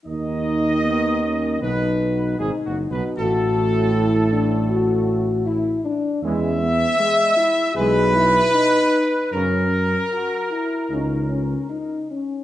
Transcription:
<<
  \new Staff \with { instrumentName = "Trumpet section" } { \time 4/4 \key b \major \tempo 4 = 77 dis''2 b'4 \tuplet 3/2 { gis'8 fis'8 b'8 } | a'2.~ a'8 r8 | e''2 b'2 | ais'2.~ ais'8 r8 | }
  \new Staff \with { instrumentName = "French horn section" } { \time 4/4 \key b \major dis'4 b8 cis'8 dis'4 dis'4 | fis'4 e'8 d'8 fis'4 e'8 d'8 | cis'8 b8 gis8 e'8 gis'8 e'8 dis'4 | cis'4 fis'8 e'8 dis'8 cis'8 dis'8 cis'8 | }
  \new Staff \with { instrumentName = "Trombone section" } { \clef bass \time 4/4 \key b \major dis2 b,4 \tuplet 3/2 { gis,8 fis,8 b,8 } | a,2.~ a,8 r8 | <e gis>8 r4. <e gis>8 r4. | <cis cis'>8 r4. <cis cis'>8 r4. | }
  \new Staff \with { instrumentName = "Tuba" } { \clef bass \time 4/4 \key b \major dis,2 b,,4 \tuplet 3/2 { gis,,8 fis,,8 b,,8 } | a,,2.~ a,,8 r8 | e,4 r4 b,,4 r4 | fis,4 r4 cis,4 r4 | }
>>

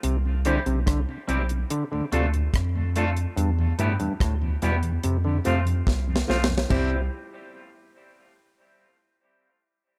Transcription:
<<
  \new Staff \with { instrumentName = "Clean electric guitar" } { \time 4/4 \key c \major \tempo 4 = 72 r8 <g c' e' g'>8 r8 <g c' e' g'>8 r8 <a d' f' a'>8 r8 <a d' f' a'>8 | r8 <g b e' g'>8 r8 <g b e' g'>8 r8 <f a c' f'>8 r8 <f a c' f'>8 | <g c' e' g'>8 r2. r8 | }
  \new Staff \with { instrumentName = "Tonewheel organ" } { \time 4/4 \key c \major r8 <g c' e'>8 r8 <g c' e'>8 r8 <a d' f'>8 r8 <a d' f'>8 | r8 <g b e'>8 r8 <g b e'>8 r8 <a c' f'>8 r8 <a c' f'>8 | <g c' e'>8 r2. r8 | }
  \new Staff \with { instrumentName = "Tonewheel organ" } { \clef bass \time 4/4 \key c \major r16 c16 r16 c16 r16 c16 r16 c16 r16 <d, a,>16 r16 <d, a,>16 r16 <d, a,>16 r8 | r16 <e, b,>16 r16 <e, b,>16 r16 <e, b,>16 r16 <e, b,>16 r16 <f, c>16 r16 <f, c>16 r16 <f, c>16 r16 <f, c>16 | r1 | }
  \new Staff \with { instrumentName = "Clav" } { \clef bass \time 4/4 \key c \major c16 r16 d16 c16 d16 r16 c16 r16 d16 d16 c16 r4 r16 | g,16 r16 a,16 g,16 a,16 r16 b,16 r16 c16 d16 c16 r4 r16 | c8 r2. r8 | }
  \new Staff \with { instrumentName = "Sub bass" } { \clef bass \time 4/4 \key c \major c,8. b,,16 c,16 r16 b,,8 r8 d,8 f,4 | e,8 g,16 r16 d,8 e,8 f,8 f,8 c,8 b,,8 | c,8 r2. r8 | }
  \new DrumStaff \with { instrumentName = "Drums" } \drummode { \time 4/4 hh8 hh16 hh16 <hh bd ss>8 hh16 hh16 hh8 hh16 hh16 <hh bd ss>8 hh16 hh16 | hh8 hh16 hh16 <hh bd ss>8 hh16 hh16 hh8 hh16 hh16 \tuplet 3/2 { <bd sn>16 r16 sn16 sn16 sn16 sn16 } | <cymc bd tomfh>4 r4 r4 r4 | }
>>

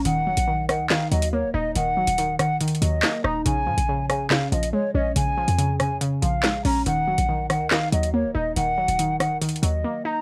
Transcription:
<<
  \new Staff \with { instrumentName = "Flute" } { \time 4/4 \key ees \dorian \tempo 4 = 141 ges''4. ges''8 f''8 ees''8 des''8 ees''8 | ges''4. ges''8 r8 ees''4 bes''8 | aes''4. aes''8 f''8 ees''8 des''8 ees''8 | aes''4. aes''8 r8 f''4 bes''8 |
ges''4. ges''8 f''8 ees''8 des''8 ees''8 | ges''4. ges''8 r8 ees''4 bes''8 | }
  \new Staff \with { instrumentName = "Synth pluck" } { \clef bass \time 4/4 \key ees \dorian ees8 ges8 ees8 ees8 ees8 ges8 bes8 ees'8 | ees8 ges8 ees8 ees8 ees8 ges8 bes8 ees'8 | des8 f8 des8 des8 des8 f8 aes8 des'8 | des8 f8 des8 des8 des8 f8 aes8 des'8 |
ees8 ges8 ees8 ees8 ees8 ges8 bes8 ees'8 | ees8 ges8 ees8 ees8 ees8 ges8 bes8 ees'8 | }
  \new Staff \with { instrumentName = "808-style bass" } { \clef bass \time 4/4 \key ees \dorian ees,,8 f,,16 bes,,4 ees,16. bes,,16. ees,8. des,,16 ees,,8 | ees,,8. ees,,4~ ees,,16 ees,8 ees,8 r8 ees,,8 | bes,,8 bes,16 bes,,4~ bes,,16 des,16 bes,,16 bes,,8 r8 bes,,8 | bes,,8. f,4.~ f,16 bes,,4 bes,,8 |
ees,,8 f,,16 bes,,4 ees,16. bes,,16. ees,8. des,,16 ees,,8 | ees,,8. ees,,4~ ees,,16 ees,8 ees,8 r4 | }
  \new DrumStaff \with { instrumentName = "Drums" } \drummode { \time 4/4 hh8. hh16 r8 <hh ss>8 <hc hh sn>8 hh16 hh16 r4 | hh8. hh16 hh8 <hh ss>8 \tuplet 3/2 { hh16 hh16 hh16 hh16 r16 r16 } <hc hh sn>8 ss8 | hh8. hh16 r8 <hh ss>8 <hc hh sn>8 hh16 hh16 r4 | hh8. hh16 hh8 <hh ss>8 hh8 hh8 <hc hh sn>8 hho8 |
hh8. hh16 r8 <hh ss>8 <hc hh sn>8 hh16 hh16 r4 | hh8. hh16 hh8 <hh ss>8 \tuplet 3/2 { hh16 hh16 hh16 hh16 r16 r16 } r4 | }
>>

